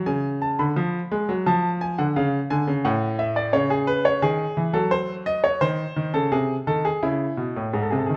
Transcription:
0.06 0.57 C#3 medium
0.06 0.28 G#5 medium
0.42 0.58 A5 medium
0.59 0.76 D3 medium
0.59 1.44 B5 medium
0.76 0.98 F3 medium
1.12 1.29 G#3 medium
1.29 1.46 F#3 medium
1.46 1.97 F3 medium
1.46 1.68 A5 medium
1.81 1.98 G#5 medium
1.98 2.15 D3 medium
1.98 2.15 F#5 medium
2.16 2.38 C#3 medium
2.16 2.38 F5 medium
2.50 2.67 D3 medium
2.50 2.72 G#5 medium
2.67 2.84 C#3 medium
2.85 3.52 A2 medium
2.85 3.06 F#5 medium
3.19 3.36 E5 medium
3.36 3.53 D5 medium
3.53 4.21 C#3 medium
3.53 3.70 C#5 medium
3.70 3.88 G#4 medium
3.87 4.05 B4 medium
4.05 4.22 C#5 medium
4.22 4.44 D#3 medium
4.22 4.73 G#4 medium
4.57 4.74 E3 medium
4.73 5.59 F#3 medium
4.73 4.91 A4 medium
4.91 5.13 C5 medium
5.26 5.44 D#5 medium
5.44 5.61 C#5 medium
5.61 5.83 D#3 medium
5.61 6.13 C5 medium
5.96 6.14 D#3 medium
6.14 6.31 C#3 medium
6.14 6.31 A4 medium
6.32 6.54 C3 medium
6.32 6.54 G#4 medium
6.67 6.89 D#3 medium
6.67 6.84 A4 medium
6.85 7.02 G#4 medium
7.03 7.24 C#3 medium
7.03 7.71 E4 medium
7.37 7.55 B2 medium
7.56 7.73 A2 medium
7.73 7.91 G#2 medium
7.73 7.82 G#4 soft
7.82 7.90 A4 soft
7.90 8.09 C3 medium
7.90 7.98 G#4 soft
7.99 8.06 A4 soft
8.06 8.17 D#3 medium
8.06 8.14 G#4 soft

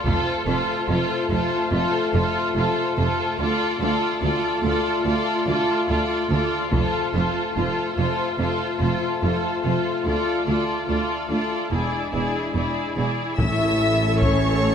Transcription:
0.04 0.13 F1 medium
0.04 0.14 F2 medium
0.04 3.35 A3 medium
0.04 3.35 F4 medium
0.04 0.47 F4 medium
0.04 0.45 A4 medium
0.04 0.46 C5 soft
0.04 taiko soft
0.46 0.55 F1 medium
0.46 0.55 F2 medium
0.46 0.88 F4 soft
0.46 0.87 A4 soft
0.46 0.88 C5 soft
0.88 0.97 F1 medium
0.88 0.96 F2 medium
0.88 1.30 F4 soft
0.88 1.28 A4 soft
0.88 1.30 C5 soft
1.29 1.39 F1 medium
1.29 1.38 F2 soft
1.29 1.71 F4 soft
1.29 1.71 A4 soft
1.29 1.72 C5 soft
1.29 taiko soft
1.72 1.80 F1 soft
1.72 1.80 F2 medium
1.72 2.13 F4 soft
1.72 2.11 A4 soft
1.72 2.13 C5 medium
2.12 2.23 F1 medium
2.12 2.22 F2 medium
2.12 2.55 F4 medium
2.12 2.54 A4 medium
2.12 2.55 C5 soft
2.55 2.63 F1 soft
2.55 2.63 F2 soft
2.55 2.96 F4 soft
2.55 2.96 A4 medium
2.55 2.96 C5 soft
2.97 3.06 F1 medium
2.97 3.05 F2 medium
2.97 3.38 F4 soft
2.97 3.38 A4 soft
2.97 3.38 C5 soft
3.39 3.47 D2 medium
3.39 3.47 D2 soft
3.39 6.55 A3 medium
3.39 6.55 F4 medium
3.39 3.80 F4 medium
3.39 3.79 A4 medium
3.39 3.80 D5 soft
3.80 3.89 D2 medium
3.80 3.90 D2 soft
3.80 4.22 F4 medium
3.80 4.21 A4 soft
3.80 4.21 D5 soft
4.22 4.30 D2 medium
4.22 4.31 D2 medium
4.22 4.63 F4 soft
4.22 4.62 A4 soft
4.22 4.62 D5 soft
4.62 4.70 D2 soft
4.62 4.72 D2 medium
4.62 5.05 F4 soft
4.62 5.04 A4 medium
4.62 5.04 D5 soft
5.05 5.13 D2 medium
5.05 5.14 D2 soft
5.05 5.46 F4 soft
5.05 5.46 A4 soft
5.05 5.45 D5 soft
5.46 5.55 D2 medium
5.46 5.55 D2 soft
5.46 5.87 F4 soft
5.46 5.88 A4 soft
5.46 5.87 D5 soft
5.88 5.96 D2 medium
5.88 5.97 D2 soft
5.88 6.29 F4 soft
5.88 6.29 A4 soft
5.88 6.29 D5 soft
6.30 6.38 D2 soft
6.30 6.39 D2 soft
6.30 6.71 F4 soft
6.30 6.69 A4 soft
6.30 6.71 D5 soft
6.70 6.80 F1 medium
6.70 6.79 F2 medium
6.70 11.69 A3 soft
6.70 11.68 F4 medium
6.70 7.13 F4 soft
6.70 7.12 A4 medium
6.70 7.12 C5 soft
6.70 taiko medium
7.13 7.23 F1 soft
7.13 7.22 F2 medium
7.13 7.54 F4 soft
7.13 7.54 A4 soft
7.13 7.53 C5 soft
7.54 7.65 F1 soft
7.54 7.65 F2 soft
7.54 7.95 F4 soft
7.54 7.96 A4 soft
7.54 7.94 C5 soft
7.95 8.06 F1 soft
7.95 8.06 F2 soft
7.95 8.37 F4 soft
7.95 8.36 A4 soft
7.95 8.37 C5 soft
8.38 8.48 F1 soft
8.38 8.47 F2 soft
8.38 8.78 F4 soft
8.38 8.78 A4 soft
8.38 8.78 C5 soft
8.79 8.89 F1 soft
8.79 8.89 F2 soft
8.79 9.21 F4 soft
8.79 9.21 A4 soft
8.79 9.20 C5 soft
9.21 9.31 F1 soft
9.21 9.30 F2 soft
9.21 9.62 F4 soft
9.21 9.63 A4 soft
9.21 9.62 C5 soft
9.63 9.72 F1 soft
9.63 9.72 F2 soft
9.63 10.04 F4 soft
9.63 10.05 A4 soft
9.63 10.04 C5 soft
10.05 10.13 D2 soft
10.05 10.14 D2 soft
10.05 10.45 F4 soft
10.05 10.47 A4 soft
10.05 10.45 D5 soft
10.46 10.55 D2 soft
10.46 10.56 D2 soft
10.46 10.86 F4 soft
10.46 10.87 A4 soft
10.46 10.87 D5 soft
10.88 10.97 D2 soft
10.88 11.28 F4 soft
10.88 11.29 A4 soft
10.88 11.28 D5 soft
11.29 11.39 D2 soft
11.29 11.71 F4 soft
11.29 11.72 A4 soft
11.29 11.70 D5 soft
11.71 11.81 E1 soft
11.71 11.80 E2 soft
11.71 13.03 G#3 soft
11.71 13.03 D4 soft
11.71 12.12 E4 soft
11.71 12.13 G#4 soft
11.71 12.11 D5 soft
12.12 12.22 E1 soft
12.12 12.21 E2 soft
12.12 12.54 E4 soft
12.12 12.54 G#4 soft
12.12 12.53 D5 soft
12.54 12.63 E1 soft
12.54 12.62 E2 soft
12.54 12.96 E4 soft
12.54 12.96 G#4 soft
12.54 12.94 D5 soft
12.96 13.05 E1 soft
12.96 13.05 E2 soft
12.96 13.38 E4 soft
12.96 13.38 G#4 soft
12.96 13.37 D5 soft
13.37 14.75 A1 soft
13.37 14.60 A2 medium
13.37 14.75 A2 soft
13.37 14.75 C#4 soft
13.37 14.18 E4 medium
13.37 14.75 A4 soft
13.37 14.18 E5 medium
13.37 14.17 E6 medium
13.37 taiko medium
14.20 14.75 C#4 soft
14.20 14.75 C#5 soft
14.20 14.75 C#6 medium
14.20 taiko medium

